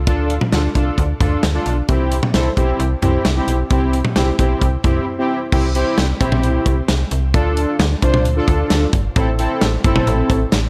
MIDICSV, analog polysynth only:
0, 0, Header, 1, 2, 480
1, 0, Start_track
1, 0, Tempo, 454545
1, 75, Time_signature, 4, 2, 24, 8
1, 11291, End_track
2, 0, Start_track
2, 0, Title_t, "Analog polysynth"
2, 0, Program_c, 0, 90
2, 75, Note_on_c, 0, 69, 98
2, 76, Note_on_c, 0, 62, 88
2, 76, Note_on_c, 0, 65, 82
2, 367, Note_off_c, 0, 69, 0
2, 368, Note_off_c, 0, 62, 0
2, 368, Note_off_c, 0, 65, 0
2, 555, Note_on_c, 0, 69, 90
2, 556, Note_on_c, 0, 62, 83
2, 556, Note_on_c, 0, 65, 77
2, 701, Note_off_c, 0, 69, 0
2, 702, Note_off_c, 0, 62, 0
2, 702, Note_off_c, 0, 65, 0
2, 793, Note_on_c, 0, 62, 84
2, 794, Note_on_c, 0, 65, 76
2, 794, Note_on_c, 0, 69, 94
2, 1087, Note_off_c, 0, 62, 0
2, 1087, Note_off_c, 0, 65, 0
2, 1087, Note_off_c, 0, 69, 0
2, 1271, Note_on_c, 0, 65, 75
2, 1272, Note_on_c, 0, 62, 86
2, 1272, Note_on_c, 0, 69, 94
2, 1493, Note_off_c, 0, 62, 0
2, 1493, Note_off_c, 0, 65, 0
2, 1493, Note_off_c, 0, 69, 0
2, 1630, Note_on_c, 0, 65, 75
2, 1630, Note_on_c, 0, 69, 91
2, 1631, Note_on_c, 0, 62, 85
2, 1852, Note_off_c, 0, 62, 0
2, 1852, Note_off_c, 0, 65, 0
2, 1852, Note_off_c, 0, 69, 0
2, 1993, Note_on_c, 0, 67, 97
2, 1994, Note_on_c, 0, 60, 89
2, 1994, Note_on_c, 0, 64, 81
2, 2286, Note_off_c, 0, 67, 0
2, 2287, Note_off_c, 0, 60, 0
2, 2287, Note_off_c, 0, 64, 0
2, 2475, Note_on_c, 0, 60, 88
2, 2475, Note_on_c, 0, 69, 94
2, 2476, Note_on_c, 0, 64, 78
2, 2621, Note_off_c, 0, 60, 0
2, 2621, Note_off_c, 0, 64, 0
2, 2621, Note_off_c, 0, 69, 0
2, 2713, Note_on_c, 0, 60, 85
2, 2713, Note_on_c, 0, 64, 79
2, 2713, Note_on_c, 0, 67, 94
2, 3006, Note_off_c, 0, 64, 0
2, 3006, Note_off_c, 0, 67, 0
2, 3007, Note_off_c, 0, 60, 0
2, 3193, Note_on_c, 0, 60, 84
2, 3193, Note_on_c, 0, 64, 81
2, 3193, Note_on_c, 0, 67, 94
2, 3413, Note_off_c, 0, 60, 0
2, 3413, Note_off_c, 0, 64, 0
2, 3414, Note_off_c, 0, 67, 0
2, 3551, Note_on_c, 0, 67, 93
2, 3552, Note_on_c, 0, 60, 83
2, 3552, Note_on_c, 0, 64, 75
2, 3773, Note_off_c, 0, 60, 0
2, 3773, Note_off_c, 0, 64, 0
2, 3773, Note_off_c, 0, 67, 0
2, 3914, Note_on_c, 0, 60, 89
2, 3914, Note_on_c, 0, 64, 78
2, 3914, Note_on_c, 0, 67, 98
2, 4207, Note_off_c, 0, 60, 0
2, 4207, Note_off_c, 0, 64, 0
2, 4207, Note_off_c, 0, 67, 0
2, 4394, Note_on_c, 0, 64, 77
2, 4395, Note_on_c, 0, 60, 86
2, 4395, Note_on_c, 0, 67, 95
2, 4541, Note_off_c, 0, 60, 0
2, 4541, Note_off_c, 0, 64, 0
2, 4541, Note_off_c, 0, 67, 0
2, 4634, Note_on_c, 0, 60, 85
2, 4634, Note_on_c, 0, 64, 77
2, 4634, Note_on_c, 0, 67, 97
2, 4927, Note_off_c, 0, 60, 0
2, 4927, Note_off_c, 0, 64, 0
2, 4927, Note_off_c, 0, 67, 0
2, 5114, Note_on_c, 0, 60, 85
2, 5114, Note_on_c, 0, 64, 81
2, 5115, Note_on_c, 0, 67, 96
2, 5334, Note_off_c, 0, 60, 0
2, 5334, Note_off_c, 0, 64, 0
2, 5334, Note_off_c, 0, 67, 0
2, 5475, Note_on_c, 0, 60, 86
2, 5476, Note_on_c, 0, 64, 75
2, 5476, Note_on_c, 0, 67, 97
2, 5694, Note_off_c, 0, 60, 0
2, 5695, Note_off_c, 0, 64, 0
2, 5695, Note_off_c, 0, 67, 0
2, 5835, Note_on_c, 0, 60, 90
2, 5835, Note_on_c, 0, 67, 98
2, 5836, Note_on_c, 0, 64, 81
2, 5981, Note_off_c, 0, 60, 0
2, 5981, Note_off_c, 0, 67, 0
2, 5982, Note_off_c, 0, 64, 0
2, 6075, Note_on_c, 0, 60, 90
2, 6075, Note_on_c, 0, 64, 81
2, 6075, Note_on_c, 0, 67, 96
2, 6367, Note_off_c, 0, 60, 0
2, 6367, Note_off_c, 0, 67, 0
2, 6368, Note_off_c, 0, 64, 0
2, 6553, Note_on_c, 0, 64, 78
2, 6554, Note_on_c, 0, 60, 88
2, 6554, Note_on_c, 0, 67, 96
2, 7139, Note_off_c, 0, 64, 0
2, 7140, Note_off_c, 0, 60, 0
2, 7140, Note_off_c, 0, 67, 0
2, 7751, Note_on_c, 0, 65, 84
2, 7752, Note_on_c, 0, 69, 99
2, 7753, Note_on_c, 0, 62, 90
2, 8192, Note_off_c, 0, 65, 0
2, 8193, Note_off_c, 0, 62, 0
2, 8193, Note_off_c, 0, 69, 0
2, 8472, Note_on_c, 0, 62, 86
2, 8472, Note_on_c, 0, 65, 82
2, 8472, Note_on_c, 0, 72, 99
2, 8693, Note_off_c, 0, 62, 0
2, 8693, Note_off_c, 0, 65, 0
2, 8693, Note_off_c, 0, 72, 0
2, 8833, Note_on_c, 0, 62, 89
2, 8834, Note_on_c, 0, 65, 85
2, 8834, Note_on_c, 0, 69, 100
2, 9346, Note_off_c, 0, 62, 0
2, 9346, Note_off_c, 0, 65, 0
2, 9346, Note_off_c, 0, 69, 0
2, 9674, Note_on_c, 0, 60, 89
2, 9674, Note_on_c, 0, 64, 85
2, 9674, Note_on_c, 0, 69, 97
2, 9820, Note_off_c, 0, 60, 0
2, 9821, Note_off_c, 0, 64, 0
2, 9821, Note_off_c, 0, 69, 0
2, 9915, Note_on_c, 0, 60, 88
2, 9915, Note_on_c, 0, 69, 94
2, 9916, Note_on_c, 0, 64, 79
2, 10207, Note_off_c, 0, 60, 0
2, 10208, Note_off_c, 0, 64, 0
2, 10208, Note_off_c, 0, 69, 0
2, 10396, Note_on_c, 0, 60, 88
2, 10396, Note_on_c, 0, 64, 79
2, 10396, Note_on_c, 0, 69, 97
2, 10981, Note_off_c, 0, 60, 0
2, 10981, Note_off_c, 0, 64, 0
2, 10981, Note_off_c, 0, 69, 0
2, 11291, End_track
0, 0, End_of_file